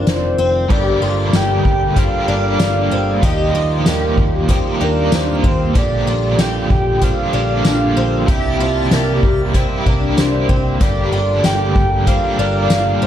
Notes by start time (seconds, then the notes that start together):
Already playing: D#3 F3 C4 D4 F4
0.07 F1 C5, snare, closed hi-hat
0.38 F1 C4
0.69 G1 G2 D3 G3 A#3 G4 A#4 D5, kick, crash
0.73 D4 G4
1.02 G1 F4
1.33 G1 G4 G5, snare, closed hi-hat, tambourine
1.65 G1, kick
1.96 G3 A#3 C4 D4 G4 F5, kick, closed hi-hat
2.27 G1 G3 A#3 D4 G4
2.60 G1, snare, closed hi-hat, tambourine
2.91 G1 C4
3.22 D#2 D#3 F3 A#3 D#4 F4 G4 D#5, kick, closed hi-hat
3.26 G4
3.55 D#2 F4
3.85 D#2 G4 A#4 F5, snare, closed hi-hat, tambourine
4.17 D#2, kick
4.48 F3 A#3 C4 D#4 G4, kick, closed hi-hat
4.79 D#2 A#3 D4 D#4 G4 A#4
5.12 D#2 C5, snare, closed hi-hat, tambourine
5.44 D#2 C4, kick
5.73 A#1 A#2 D3 F3 A#3 G4, kick, closed hi-hat
5.78 D4 G4 D5
6.06 A#1 F4
6.38 A#1 G4 G5, snare, closed hi-hat, tambourine
6.70 A#1, kick
7.01 F3 A#3 C4 D4 G4 F5, kick, closed hi-hat
7.33 A#1 F3 A#3 D4 G4
7.65 A#1, snare, closed hi-hat, tambourine
7.96 A#1 C4
8.26 C2 C3 G3 A#3 G4 E5, kick, closed hi-hat
8.31 E4 G4
8.59 C2 F4
8.91 C2 G4 A#4, snare, closed hi-hat, tambourine
9.23 C2, kick
9.54 G3 A#3 C4 E4 G4, kick, closed hi-hat
9.86 C2 A#3 D4 E4 G4 A#4, kick
10.17 C2 C5, snare, closed hi-hat, tambourine
10.49 C2 C4, kick
10.80 G1 G2 D3 G3 A#3 G4 A#4 D5, kick, closed hi-hat
10.84 D4 G4
11.12 G1 F4
11.43 G1 G4 G5 A#5, snare, closed hi-hat, tambourine
11.76 G1, kick
12.06 G3 A#3 C4 D4 G4 F5, kick, closed hi-hat
12.38 G1 G3 A#3 D4 G4
12.70 snare, closed hi-hat, tambourine
13.02 G1 C4